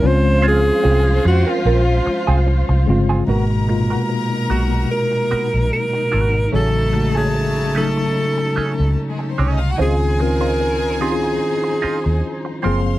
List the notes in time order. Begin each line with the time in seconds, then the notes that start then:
0.02 C#2 F3 G#3 C4 C#4 F4 C5
0.07 C5
0.42 C4 F4 G#4
0.48 G#4
0.83 C2 C4 F4 G#4
1.25 F2 F#4, muted clean electric guitar stroke
1.47 C4 F4 A#4
1.65 A#1 C4 F4 A#4
2.06 muted clean electric guitar stroke, muted fingered electric bass stroke
2.27 C2 C4 F4 G#4
2.47 muted clean electric guitar stroke
2.69 C2, muted clean electric guitar stroke
2.86 G1 C#3 G#3 C4 F4
3.09 C4 F4 G#4
3.26 G#1 B2 F#3 G#3 A#3 B3 D#4 F#4 A#4 A#5
3.50 muted clean electric guitar stroke
3.67 A#2 G#3 A#3 F4, muted clean electric guitar stroke
3.73 B2
3.90 B3 F#4 A#4
4.09 muted clean electric guitar stroke
4.49 B1 B2 G#3 A#3 B3 F#4 A#4
4.72 muted clean electric guitar stroke
4.91 A#4
5.12 muted clean electric guitar stroke
5.31 B3 F#4 A#4, muted fingered electric bass stroke
5.53 A#1, muted clean electric guitar stroke
5.73 A#4
5.93 muted clean electric guitar stroke
6.12 G#1 B3 F#4 A#4
6.34 muted clean electric guitar stroke
6.52 A1 C#3 F#3 A3 C#4 F#4 G#4 A4 A5
6.75 muted clean electric guitar stroke
6.93 C#3 G#3 A3 F#4, muted clean electric guitar stroke
7.15 A3 C#4 G#4
7.35 muted clean electric guitar stroke
7.74 C#3 F#3 A3 C#4 D#4 G#4 A4
7.97 muted clean electric guitar stroke
8.38 muted clean electric guitar stroke
8.56 A3 C#4 G#4, muted fingered electric bass stroke
8.79 C#2, muted clean electric guitar stroke
9.09 G#3 G#4
9.19 A3 A4, muted clean electric guitar stroke
9.31 C4 C5
9.38 C2 A3 C#4 G#4 C#5
9.51 D#4 D#5
9.60 F4 F5, muted clean electric guitar stroke
9.70 F#4 F#5
9.78 C#2 D#3 F3 C4 C#4 D#4 F4 G#4 C5 G#5
10.00 muted clean electric guitar stroke
10.19 D#3 C4 C#4 F4 A#4, muted clean electric guitar stroke
10.41 D#4 F4 C5
10.60 muted clean electric guitar stroke
11.00 D#3 C4 C#4 D#4 E4 F4 G#4 C5
11.10 F4
11.23 muted clean electric guitar stroke
11.64 muted clean electric guitar stroke
11.82 D#4 F4 C5, muted fingered electric bass stroke
12.04 D#2, muted clean electric guitar stroke
12.45 muted clean electric guitar stroke
12.63 F#1 C3 F3 G#3 A#3 C4 F4 G#4 A#4 C5 F5 C6
12.86 muted clean electric guitar stroke